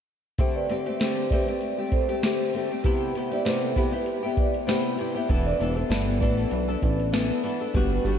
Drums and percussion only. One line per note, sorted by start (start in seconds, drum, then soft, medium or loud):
0.38 kick medium
0.38 closed hi-hat medium
0.70 closed hi-hat medium
0.86 closed hi-hat soft
1.00 snare medium
1.00 closed hi-hat medium
1.31 kick medium
1.31 closed hi-hat medium
1.48 closed hi-hat soft
1.61 closed hi-hat medium
1.92 kick medium
1.92 closed hi-hat medium
2.09 closed hi-hat soft
2.23 snare loud
2.23 closed hi-hat medium
2.53 closed hi-hat medium
2.72 closed hi-hat medium
2.84 kick medium
2.84 closed hi-hat medium
3.15 closed hi-hat medium
3.31 closed hi-hat soft
3.45 snare medium
3.45 closed hi-hat medium
3.76 kick medium
3.76 closed hi-hat medium
3.94 closed hi-hat soft
4.06 closed hi-hat medium
4.37 kick medium
4.37 closed hi-hat medium
4.54 closed hi-hat soft
4.69 snare loud
4.69 closed hi-hat medium
4.99 closed hi-hat medium
5.17 closed hi-hat soft
5.30 kick medium
5.30 closed hi-hat medium
5.61 closed hi-hat medium
5.77 closed hi-hat soft
5.91 snare medium
5.91 closed hi-hat medium
6.21 kick medium
6.21 closed hi-hat medium
6.39 closed hi-hat soft
6.51 closed hi-hat medium
6.82 kick medium
6.82 closed hi-hat medium
7.00 closed hi-hat soft
7.14 snare loud
7.14 closed hi-hat medium
7.44 closed hi-hat medium
7.62 closed hi-hat medium
7.75 kick medium
7.75 closed hi-hat medium
8.06 closed hi-hat medium